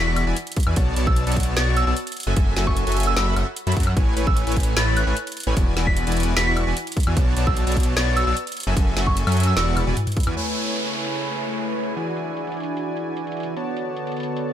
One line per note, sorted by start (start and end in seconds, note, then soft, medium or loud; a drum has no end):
0.00 0.25 E1 medium
0.00 0.24 E3 medium
0.00 0.25 E4 medium
0.00 0.24 F#4 medium
0.00 0.24 D5 medium
0.00 0.24 C#6 loud
0.07 0.13 B6 medium
0.16 closed hi-hat medium
0.16 high woodblock medium
0.27 0.34 E1 loud
0.27 0.36 E3 medium
0.27 0.36 E4 medium
0.27 0.36 F#4 medium
0.27 0.36 D5 medium
0.27 0.36 G#5 medium
0.37 closed hi-hat medium
0.47 closed hi-hat medium
0.52 closed hi-hat medium
0.56 kick loud
0.56 closed hi-hat medium
0.60 closed hi-hat medium
0.63 0.75 E2 loud
0.63 closed hi-hat medium
0.63 high woodblock medium
0.67 0.74 E3 loud
0.67 0.74 E4 medium
0.67 0.74 F#4 medium
0.67 0.74 D5 medium
0.67 0.74 G#5 loud
0.76 0.95 B1 loud
0.76 0.94 B3 loud
0.76 0.94 F#4 medium
0.76 0.94 C#5 medium
0.76 0.94 D5 medium
0.76 0.94 A5 loud
0.76 kick loud
0.76 closed hi-hat medium
0.96 1.25 B1 loud
0.96 1.24 B3 medium
0.96 1.24 F#4 medium
0.96 1.24 C#5 medium
0.96 1.24 D5 medium
0.96 1.24 A5 loud
0.96 closed hi-hat medium
1.07 1.17 E6 medium
1.07 kick loud
1.16 closed hi-hat medium
1.27 1.55 B1 loud
1.27 1.54 B3 medium
1.27 1.54 F#4 medium
1.27 1.54 C#5 medium
1.27 1.54 D5 medium
1.27 1.54 A5 loud
1.27 closed hi-hat soft
1.32 closed hi-hat medium
1.37 kick medium
1.37 closed hi-hat medium
1.40 closed hi-hat medium
1.43 closed hi-hat medium
1.56 1.85 B1 medium
1.56 1.84 B3 medium
1.56 1.85 F#4 medium
1.56 1.84 C#5 medium
1.56 1.84 D5 medium
1.56 1.85 C#6 loud
1.56 1.67 A6 medium
1.56 snare loud
1.56 closed hi-hat medium
1.77 1.83 E6 medium
1.77 closed hi-hat medium
1.87 1.94 B1 loud
1.87 1.96 B3 medium
1.87 1.96 F#4 medium
1.87 1.96 C#5 medium
1.87 1.96 D5 medium
1.87 1.96 A5 medium
1.87 1.93 E6 medium
1.97 closed hi-hat medium
2.07 closed hi-hat soft
2.12 closed hi-hat medium
2.17 closed hi-hat medium
2.20 closed hi-hat medium
2.23 2.35 F#1 loud
2.23 2.34 F#3 loud
2.23 2.34 F#4 medium
2.23 2.34 A4 medium
2.23 2.34 E5 medium
2.23 2.34 G#5 loud
2.23 closed hi-hat medium
2.36 2.55 F#1 loud
2.36 2.54 F#3 loud
2.36 2.54 F#4 medium
2.36 2.54 A4 medium
2.36 2.54 E5 medium
2.36 2.54 G#5 loud
2.36 kick loud
2.36 closed hi-hat medium
2.56 2.85 F#1 loud
2.56 2.84 F#3 medium
2.56 2.84 F#4 medium
2.56 2.84 A4 medium
2.56 2.84 E5 medium
2.56 2.84 G#5 loud
2.56 snare medium
2.56 closed hi-hat medium
2.67 2.77 C#6 medium
2.67 kick medium
2.77 closed hi-hat medium
2.87 3.15 F#1 loud
2.87 3.14 F#3 medium
2.87 3.14 F#4 medium
2.87 3.14 A4 medium
2.87 3.14 E5 medium
2.87 3.14 G#5 loud
2.87 closed hi-hat soft
2.92 closed hi-hat medium
2.97 closed hi-hat soft
3.00 closed hi-hat medium
3.03 3.13 E6 medium
3.03 closed hi-hat medium
3.16 3.35 F#1 medium
3.16 3.35 F#3 medium
3.16 3.35 F#4 medium
3.16 3.35 A4 medium
3.16 3.35 E5 medium
3.16 3.35 B5 loud
3.16 3.23 E6 medium
3.16 snare loud
3.16 closed hi-hat medium
3.36 3.44 F#1 medium
3.36 3.46 F#3 medium
3.36 3.46 F#4 medium
3.36 3.46 A4 medium
3.36 3.46 E5 medium
3.36 3.46 F#5 medium
3.36 closed hi-hat medium
3.36 high woodblock medium
3.56 closed hi-hat medium
3.67 3.75 F#2 loud
3.67 3.75 F#3 medium
3.67 3.75 F#4 medium
3.67 3.75 A4 medium
3.67 3.75 E5 medium
3.67 3.75 B5 medium
3.67 closed hi-hat soft
3.72 closed hi-hat medium
3.77 3.95 F#2 loud
3.77 3.91 F#3 loud
3.77 3.91 F#4 medium
3.77 3.91 A4 medium
3.77 3.91 E5 medium
3.77 3.91 F#5 loud
3.77 kick loud
3.77 closed hi-hat soft
3.80 closed hi-hat medium
3.83 closed hi-hat medium
3.83 high woodblock medium
3.97 4.15 A1 loud
3.97 4.14 A3 medium
3.97 4.14 E4 medium
3.97 4.14 B4 medium
3.97 4.14 C#5 medium
3.97 4.14 G#5 loud
3.97 kick loud
3.97 closed hi-hat medium
4.16 4.45 A1 loud
4.16 4.44 A3 medium
4.16 4.44 E4 medium
4.16 4.44 B4 medium
4.16 4.44 C#5 medium
4.16 4.44 G#5 loud
4.16 closed hi-hat medium
4.27 4.37 E6 medium
4.27 kick loud
4.37 closed hi-hat medium
4.47 4.75 A1 loud
4.47 4.74 A3 medium
4.47 4.74 E4 medium
4.47 4.74 B4 medium
4.47 4.74 C#5 medium
4.47 4.74 G#5 loud
4.47 closed hi-hat soft
4.52 closed hi-hat medium
4.57 kick medium
4.57 closed hi-hat soft
4.60 closed hi-hat medium
4.63 closed hi-hat medium
4.76 5.05 A1 loud
4.76 5.04 A3 medium
4.76 5.04 E4 medium
4.76 5.04 B4 medium
4.76 5.04 C#5 medium
4.76 5.04 B5 loud
4.76 4.87 A6 medium
4.76 snare loud
4.76 closed hi-hat medium
4.97 5.07 F#6 medium
4.97 closed hi-hat medium
5.07 5.14 A1 loud
5.07 5.16 A3 medium
5.07 5.16 E4 medium
5.07 5.16 B4 medium
5.07 5.16 C#5 medium
5.07 5.16 G#5 medium
5.17 closed hi-hat medium
5.27 closed hi-hat soft
5.32 closed hi-hat medium
5.37 closed hi-hat soft
5.40 closed hi-hat medium
5.43 5.55 A1 medium
5.43 5.54 A3 loud
5.43 5.54 E4 medium
5.43 5.54 B4 medium
5.43 5.54 C#5 medium
5.43 5.54 G#5 loud
5.43 closed hi-hat medium
5.57 5.75 E1 loud
5.57 5.74 E3 loud
5.57 5.74 E4 medium
5.57 5.74 F#4 medium
5.57 5.74 D5 medium
5.57 5.74 G#5 loud
5.57 kick loud
5.57 closed hi-hat medium
5.76 6.05 E1 loud
5.76 6.04 E3 medium
5.76 6.04 E4 medium
5.76 6.04 F#4 medium
5.76 6.04 D5 medium
5.76 6.04 G#5 loud
5.76 snare medium
5.76 closed hi-hat medium
5.87 5.97 B6 medium
5.87 kick medium
5.97 closed hi-hat medium
6.07 6.35 E1 loud
6.07 6.34 E3 loud
6.07 6.34 E4 medium
6.07 6.34 F#4 medium
6.07 6.34 D5 medium
6.07 6.34 G#5 loud
6.07 closed hi-hat soft
6.12 closed hi-hat medium
6.17 closed hi-hat soft
6.20 closed hi-hat medium
6.23 closed hi-hat medium
6.37 6.65 E1 loud
6.37 6.64 E3 medium
6.37 6.64 E4 medium
6.37 6.64 F#4 medium
6.37 6.64 D5 medium
6.37 6.64 C#6 loud
6.37 6.43 B6 medium
6.37 snare loud
6.37 closed hi-hat medium
6.47 6.53 B6 medium
6.57 closed hi-hat medium
6.57 high woodblock medium
6.67 6.74 E1 medium
6.67 6.76 E3 medium
6.67 6.76 E4 medium
6.67 6.76 F#4 medium
6.67 6.76 D5 medium
6.67 6.76 G#5 medium
6.77 closed hi-hat medium
6.87 closed hi-hat soft
6.92 closed hi-hat medium
6.97 kick loud
6.97 closed hi-hat soft
7.00 closed hi-hat medium
7.03 7.18 E2 medium
7.03 7.14 E3 loud
7.03 7.14 E4 medium
7.03 7.14 F#4 medium
7.03 7.14 D5 medium
7.03 7.14 G#5 loud
7.03 closed hi-hat medium
7.03 high woodblock medium
7.16 7.35 B1 loud
7.16 7.34 B3 loud
7.16 7.34 F#4 medium
7.16 7.34 C#5 medium
7.16 7.34 D5 medium
7.16 7.34 A5 loud
7.16 kick loud
7.16 closed hi-hat medium
7.37 7.65 B1 loud
7.37 7.64 B3 medium
7.37 7.64 F#4 medium
7.37 7.64 C#5 medium
7.37 7.64 D5 medium
7.37 7.64 A5 loud
7.37 closed hi-hat medium
7.47 7.57 E6 medium
7.47 kick loud
7.57 closed hi-hat medium
7.67 7.95 B1 loud
7.67 7.94 B3 medium
7.67 7.94 F#4 medium
7.67 7.94 C#5 medium
7.67 7.94 D5 medium
7.67 7.94 A5 loud
7.67 closed hi-hat soft
7.72 closed hi-hat medium
7.77 kick medium
7.77 closed hi-hat soft
7.80 closed hi-hat medium
7.83 closed hi-hat medium
7.96 8.25 B1 loud
7.96 8.24 B3 medium
7.96 8.24 F#4 medium
7.96 8.24 C#5 medium
7.96 8.24 D5 medium
7.96 8.24 C#6 loud
7.96 8.07 A6 medium
7.96 snare loud
7.96 closed hi-hat medium
8.16 8.23 E6 medium
8.16 closed hi-hat medium
8.27 8.34 B1 loud
8.27 8.36 B3 medium
8.27 8.36 F#4 medium
8.27 8.36 C#5 medium
8.27 8.36 D5 medium
8.27 8.36 A5 medium
8.27 8.33 E6 medium
8.37 closed hi-hat medium
8.47 closed hi-hat soft
8.52 closed hi-hat medium
8.57 closed hi-hat soft
8.60 closed hi-hat medium
8.63 8.75 F#1 loud
8.63 8.74 F#3 loud
8.63 8.74 F#4 medium
8.63 8.74 A4 medium
8.63 8.74 E5 medium
8.63 8.74 G#5 loud
8.63 closed hi-hat medium
8.76 8.95 F#1 loud
8.76 8.94 F#3 medium
8.76 8.94 F#4 medium
8.76 8.94 A4 medium
8.76 8.94 E5 medium
8.76 8.94 G#5 loud
8.76 kick loud
8.76 closed hi-hat medium
8.97 9.25 F#1 loud
8.97 9.24 F#3 medium
8.97 9.24 F#4 medium
8.97 9.24 A4 medium
8.97 9.24 E5 medium
8.97 9.24 G#5 loud
8.97 snare medium
8.97 closed hi-hat medium
9.07 9.16 C#6 medium
9.07 kick medium
9.17 closed hi-hat medium
9.27 9.55 F#2 loud
9.27 9.54 F#3 medium
9.27 9.54 F#4 medium
9.27 9.54 A4 medium
9.27 9.54 E5 medium
9.27 9.54 G#5 loud
9.27 closed hi-hat soft
9.27 high woodblock medium
9.32 closed hi-hat medium
9.37 closed hi-hat medium
9.40 closed hi-hat medium
9.43 9.53 E6 medium
9.43 closed hi-hat medium
9.57 9.85 E1 medium
9.57 9.84 E3 medium
9.57 9.84 E4 medium
9.57 9.84 F#4 medium
9.57 9.84 D5 medium
9.57 9.84 C#6 loud
9.57 9.63 E6 medium
9.57 snare loud
9.57 closed hi-hat medium
9.77 closed hi-hat medium
9.77 high tom medium
9.77 high woodblock medium
9.87 9.94 E1 medium
9.87 9.96 E3 medium
9.87 9.96 E4 medium
9.87 9.96 F#4 medium
9.87 9.96 D5 medium
9.87 9.96 G#5 loud
9.87 high tom medium
9.97 closed hi-hat medium
9.97 mid tom medium
10.07 closed hi-hat soft
10.07 mid tom medium
10.12 closed hi-hat medium
10.17 kick loud
10.17 closed hi-hat medium
10.20 closed hi-hat medium
10.23 10.35 E2 loud
10.23 10.34 E3 loud
10.23 10.34 E4 medium
10.23 10.34 F#4 medium
10.23 10.34 D5 medium
10.23 10.34 G#5 loud
10.23 closed hi-hat medium
10.23 mid tom medium
10.23 high woodblock medium
10.37 11.95 C#3 medium
10.37 11.94 A3 medium
10.37 11.95 A3 medium
10.37 11.94 E4 medium
10.37 13.54 G#4 medium
10.37 11.94 B4 medium
10.37 11.94 C#5 medium
10.37 11.94 G#5 medium
10.37 closed hi-hat medium
10.37 downlifter medium
10.57 closed hi-hat medium
10.77 closed hi-hat medium
10.87 closed hi-hat soft
10.92 closed hi-hat medium
10.97 closed hi-hat soft
11.00 closed hi-hat medium
11.03 closed hi-hat medium
11.17 closed hi-hat medium
11.37 closed hi-hat medium
11.57 closed hi-hat medium
11.67 closed hi-hat soft
11.72 closed hi-hat medium
11.77 closed hi-hat soft
11.80 closed hi-hat medium
11.83 closed hi-hat medium
11.97 13.54 E3 medium
11.97 13.55 E3 medium
11.97 13.55 D4 medium
11.97 13.54 E4 medium
11.97 13.54 F#4 medium
11.97 13.54 D5 medium
11.97 13.54 G#5 medium
11.97 closed hi-hat medium
12.17 closed hi-hat medium
12.37 closed hi-hat medium
12.47 closed hi-hat soft
12.52 closed hi-hat medium
12.57 closed hi-hat soft
12.60 closed hi-hat medium
12.63 closed hi-hat medium
12.77 closed hi-hat medium
12.97 closed hi-hat medium
13.17 closed hi-hat medium
13.27 closed hi-hat soft
13.32 closed hi-hat medium
13.37 closed hi-hat soft
13.40 closed hi-hat medium
13.43 closed hi-hat medium
13.57 14.53 D3 medium
13.57 14.53 B3 medium
13.57 14.53 F#4 medium
13.57 14.53 A4 medium
13.57 14.53 C#5 medium
13.57 14.53 D5 medium
13.57 14.53 A5 medium
13.57 closed hi-hat medium
13.77 closed hi-hat medium
13.97 closed hi-hat medium
14.07 closed hi-hat soft
14.12 closed hi-hat medium
14.17 closed hi-hat soft
14.20 closed hi-hat medium
14.23 closed hi-hat medium
14.37 closed hi-hat medium